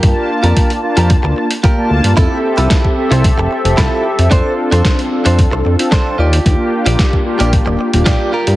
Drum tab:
HH |x--xxx-xx--xx--x|x--xx--xx--xx--x|x--xxx-xx--xx--x|x--xx--xx--xx--x|
SD |----------------|----o-------o---|----o-------o---|----o-------o---|
BD |o---o---o---o---|o---oo--o---o---|o---o---o---o---|o---oo--o---o---|